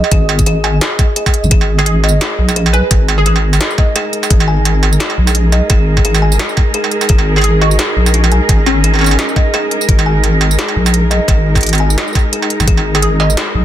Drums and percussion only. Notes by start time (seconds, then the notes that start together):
0.04 struck metal
0.12 kick, closed hi-hat
0.29 struck metal
0.39 kick, closed hi-hat, tambourine
0.46 closed hi-hat
0.64 struck metal
0.81 snare, closed hi-hat
0.99 kick, closed hi-hat, tambourine, struck metal
1.16 closed hi-hat
1.26 kick, tambourine, struck metal
1.34 closed hi-hat
1.44 tambourine
1.51 kick, closed hi-hat
1.61 struck metal
1.79 struck metal
1.86 closed hi-hat
2.04 struck metal
2.08 tambourine
2.21 snare, closed hi-hat, struck metal
2.49 tambourine, struck metal
2.56 closed hi-hat
2.66 struck metal
2.74 closed hi-hat
2.91 kick, closed hi-hat, struck metal
3.08 struck metal
3.26 closed hi-hat
3.36 struck metal
3.53 tambourine, struck metal
3.61 snare, closed hi-hat
3.70 tambourine
3.78 kick, struck metal
3.96 closed hi-hat, struck metal
4.13 closed hi-hat
4.23 tambourine, struck metal
4.31 kick, closed hi-hat
4.40 struck metal
4.65 closed hi-hat, struck metal
4.83 struck metal
4.93 tambourine
5.00 snare, closed hi-hat
5.10 struck metal
5.27 tambourine, struck metal
5.35 closed hi-hat
5.52 closed hi-hat, struck metal
5.70 kick, closed hi-hat, struck metal
5.97 kick, struck metal
6.05 closed hi-hat
6.15 tambourine, struck metal
6.32 tambourine
6.39 snare, closed hi-hat, struck metal
6.49 tambourine
6.57 kick, struck metal
6.74 closed hi-hat
6.84 struck metal
6.91 closed hi-hat
7.01 tambourine, struck metal
7.09 kick, closed hi-hat
7.18 struck metal
7.36 struck metal
7.38 struck metal
7.42 closed hi-hat, struck metal
7.62 struck metal
7.71 tambourine
7.79 snare, closed hi-hat, struck metal
8.06 tambourine, struck metal
8.14 closed hi-hat
8.24 struck metal
8.32 closed hi-hat
8.49 kick, closed hi-hat, struck metal
8.66 struck metal
8.84 closed hi-hat
8.94 struck metal
8.95 struck metal
8.99 struck metal
9.01 struck metal
9.04 tambourine, struck metal
9.07 struck metal
9.11 struck metal
9.19 snare, closed hi-hat
9.29 tambourine
9.36 kick, struck metal
9.54 struck metal
9.71 closed hi-hat
9.81 tambourine
9.89 kick, closed hi-hat
9.99 struck metal
10.24 closed hi-hat, struck metal
10.41 struck metal
10.51 tambourine
10.59 snare, closed hi-hat
10.68 struck metal
10.86 tambourine, struck metal
10.94 closed hi-hat
11.11 closed hi-hat, struck metal
11.28 kick, closed hi-hat, struck metal
11.55 kick, closed hi-hat, struck metal
11.57 closed hi-hat
11.61 closed hi-hat
11.63 closed hi-hat
11.66 closed hi-hat
11.69 closed hi-hat
11.73 closed hi-hat, tambourine, struck metal
11.75 closed hi-hat
11.78 closed hi-hat
11.90 tambourine
11.98 snare, closed hi-hat, struck metal
12.08 tambourine
12.13 kick, closed hi-hat, tambourine, struck metal
12.19 tambourine
12.33 closed hi-hat
12.42 struck metal
12.50 closed hi-hat
12.60 tambourine, struck metal
12.68 kick, closed hi-hat
12.77 struck metal
12.95 struck metal
13.03 closed hi-hat
13.20 struck metal
13.30 tambourine
13.37 snare, closed hi-hat, struck metal